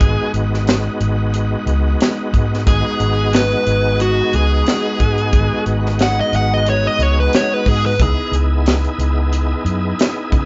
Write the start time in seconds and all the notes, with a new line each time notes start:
Already playing: G#3 B3 D#4 F#4 G#4
0.00 G#1, kick, closed hi-hat
0.34 G#1, closed hi-hat
0.54 snare
0.67 snare, closed hi-hat
1.00 G#1, closed hi-hat
1.34 closed hi-hat
1.66 C#2, closed hi-hat
2.01 snare, closed hi-hat
2.33 G#2, kick, closed hi-hat
2.54 snare
2.65 G#1 G#3 B3 D#4 F#4 G#4, kick, closed hi-hat
3.00 G#1, closed hi-hat
3.33 B4, snare, closed hi-hat
3.52 closed hi-hat
3.67 G#1, closed hi-hat
4.00 F#4, closed hi-hat
4.33 C#2 G#4, closed hi-hat
4.67 snare, closed hi-hat
5.00 G#2, kick, closed hi-hat
5.18 closed hi-hat
5.33 G#1, kick, closed hi-hat
5.66 G#1, closed hi-hat
5.86 snare
5.99 F#5, snare, closed hi-hat
6.20 D#5
6.33 G#1 F#5, closed hi-hat
6.54 D#5
6.66 C#5, closed hi-hat
6.87 D#5
6.99 C#2 C#5, closed hi-hat
7.20 B4
7.33 C#5, snare, closed hi-hat
7.54 B4
7.66 G#2 G#4, kick, open hi-hat
7.86 B4
7.99 C#2 B3 D#4 E4 G#4, kick, closed hi-hat
8.32 C#2, closed hi-hat
8.66 snare, closed hi-hat
8.85 closed hi-hat
8.98 C#2, closed hi-hat
9.33 closed hi-hat
9.65 F#2, closed hi-hat
9.99 snare, closed hi-hat
10.32 C#3, kick, closed hi-hat